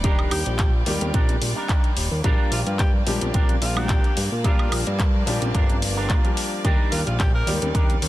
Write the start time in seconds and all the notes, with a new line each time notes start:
Already playing: D#1 G3 D5
0.03 D#3 G3 A#3 D4 D#4 F4 G4 A#4 D5, kick, closed hi-hat
0.19 high woodblock
0.31 D#2 G4, open hi-hat, high woodblock
0.46 A#1, closed hi-hat
0.59 kick, clap, closed hi-hat
0.74 muted clean electric guitar stroke
0.86 D#2 D#3 G3 A#3 G4 D5, open hi-hat, low conga
1.01 D#2, muted clean electric guitar stroke, closed hi-hat, high conga
1.14 A#1 D4 D#4 G4 A#4, kick, closed hi-hat
1.29 closed hi-hat, high conga
1.42 A#1, open hi-hat
1.56 D4 D#4 G4 A#4
1.69 kick, clap, closed hi-hat
1.84 closed hi-hat
1.97 D#1, open hi-hat
2.11 D#2
2.24 A#1 F3 G3 A#3 D4 F4 G4 A#4 D5, kick, closed hi-hat
2.52 A#1 F4, open hi-hat
2.66 G2 F4, closed hi-hat
2.79 G4, kick, clap, closed hi-hat
2.94 muted clean electric guitar stroke
3.06 A#1 F3 G3 A#3 D4 G4, open hi-hat, low conga
3.21 A#1, muted clean electric guitar stroke, closed hi-hat, high conga
3.34 A#1 D4 F4 G4 A#4, kick, closed hi-hat
3.49 closed hi-hat, high conga
3.62 A#1 F4, open hi-hat
3.76 D4 F4 G4 A#4, low conga, high woodblock
3.89 kick, clap, closed hi-hat
4.04 closed hi-hat
4.17 G2, open hi-hat
4.32 A#2
4.44 F3 G3 A#3 D4 F4 G4 A#4 A5, kick, closed hi-hat
4.59 high woodblock
4.72 A#1, open hi-hat, high woodblock
4.87 G2, closed hi-hat
5.00 kick, clap, closed hi-hat
5.14 muted clean electric guitar stroke
5.26 A#1 F3 G3 A#3 D4 G4, open hi-hat, low conga
5.41 A#1, muted clean electric guitar stroke, closed hi-hat, high conga
5.54 G1 D4 F4 G4 A#4, kick, closed hi-hat
5.69 closed hi-hat, high conga
5.82 open hi-hat
5.96 D4 F4 G4 A#4
6.10 A#2, kick, clap, closed hi-hat
6.24 F3 G3 A#3 D4 G4, closed hi-hat
6.37 open hi-hat
6.64 D#2 D#3 G3 A#3 D4 D#4 G4 A#4 D5, kick, closed hi-hat
6.92 D#2 F4, open hi-hat
7.07 A#1 F4, closed hi-hat
7.19 G4, kick, clap, closed hi-hat
7.34 A#4, muted clean electric guitar stroke
7.46 D#2 D#3 G3 A#3 G4 D5, open hi-hat, low conga
7.62 D#2, muted clean electric guitar stroke, closed hi-hat, high conga
7.74 D#2 D4 D#4 G4 A#4, kick, closed hi-hat
7.89 closed hi-hat, high conga
8.02 D#2, open hi-hat